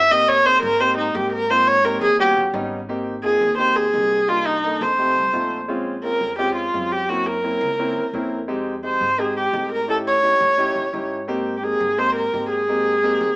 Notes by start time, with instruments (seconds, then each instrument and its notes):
Already playing: upright bass G#1, viola E5
0.10 grand piano A#3 C4 D#4 G4, viola D#5
0.29 viola C#5
0.44 grand piano A#3 C4 D#4 G#4, viola C5
0.62 upright bass G#2, viola A#4
0.80 grand piano A#3 C4 D#4 G4, viola C5
0.98 viola D#4
1.14 upright bass G#2, grand piano A#3 C4 D#4 G4, viola G4
1.33 viola A#4
1.49 grand piano A#3 C4 D#4 F4, viola C5
1.68 viola C#5
1.84 grand piano A#3 C4 D#4 G4, viola A#4
2.01 upright bass D#2, viola G#4
2.19 grand piano G3 B3 C#4 F#4, viola G4
2.36 upright bass A1
2.54 upright bass G#1, grand piano G3 B3 C#4 D#4
2.89 grand piano A#3 C4 D#4 G4
3.23 grand piano A#3 C4 D#4 F4, viola G#4
3.41 upright bass D#2
3.58 grand piano A#3 C4 D#4 G4, viola C5
3.76 viola G#4
3.93 upright bass C2, grand piano A#3 C4 D#4 G4
4.28 grand piano A#3 D4 D#4 G4, viola F4
4.46 viola D#4
4.64 grand piano A#3 D4 D#4 A4
4.81 upright bass F2, viola C5
4.98 grand piano A3 C4 D#4 G4
5.16 upright bass C2
5.33 upright bass A#1, grand piano A3 C4 D#4 F4
5.68 grand piano G#3 C4 C#4 F4
6.04 grand piano G#3 C4 C#4 F4, viola A#4
6.21 upright bass F2
6.38 grand piano G#3 C4 C#4 F4, viola G4
6.56 viola F4
6.74 upright bass F#2, grand piano G#3 C4 C#4 F4
6.92 viola G4
7.09 grand piano A#3 C4 C#4 E4, viola F#4
7.27 viola A#4
7.44 grand piano A#3 C4 C#4 E4
7.61 upright bass C#2
7.79 grand piano A#3 C4 C#4 E4
7.96 upright bass D#2
8.13 upright bass F2, grand piano A#3 C4 C#4 E4
8.48 grand piano G#3 C4 D#4 G4
8.83 grand piano G#3 C4 D#4 G4, viola C5
9.01 upright bass G#2
9.18 grand piano G#3 C4 D#4 G4, viola G#4
9.37 viola G4
9.53 upright bass A2, grand piano G#3 C4 D#4 G4
9.72 viola A#4
9.88 grand piano C#4 D#4 E4 G4, viola A4
10.07 viola C#5
10.23 grand piano C#4 D#4 E4 G4
10.40 upright bass A2
10.58 grand piano C#4 D#4 E4 G4
10.76 upright bass A2
10.93 upright bass G#2, grand piano C#4 D#4 E4 G4
11.28 grand piano A#3 C4 D#4 G4
11.57 viola G4
11.63 grand piano A#3 C4 D#4 G4, viola G#4
11.80 upright bass G#2
11.97 grand piano A#3 C4 D#4 G4, viola C5
12.16 viola A#4
12.33 upright bass G#2, grand piano A#3 C4 D#4 G4
12.50 viola G#4
12.68 grand piano A#3 C4 D#4 G4
13.03 grand piano A#3 C4 D#4 G4
13.21 upright bass D#2